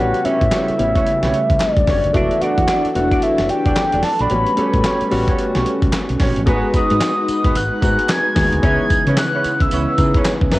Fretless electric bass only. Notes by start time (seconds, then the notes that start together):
0.00 A1
0.26 muted fretless electric bass stroke
0.42 A2
0.69 muted fretless electric bass stroke
0.79 A1
1.23 B1
1.50 C#2
1.77 B1
1.88 F#1
2.04 F1
2.15 E1
2.42 muted fretless electric bass stroke
2.58 E2
2.85 muted fretless electric bass stroke
2.96 E1
3.39 F#1
3.66 E1
3.77 muted fretless electric bass stroke
3.93 E1
4.20 A#1
4.31 A1
4.58 muted fretless electric bass stroke
4.74 A2
5.01 muted fretless electric bass stroke
5.12 A1
5.56 B1
5.82 C#2
6.10 B1
6.20 A#1
6.37 A1
6.47 G#1
6.74 muted fretless electric bass stroke
6.91 G#2
7.28 muted fretless electric bass stroke
7.45 G#1
7.55 G#1
7.83 G#2
8.37 D#2
8.53 D2
8.63 C#2
8.91 muted fretless electric bass stroke
9.07 C#3
9.45 muted fretless electric bass stroke
9.61 C#2
9.72 C#2
9.98 C#3
10.42 C#2
10.53 F#2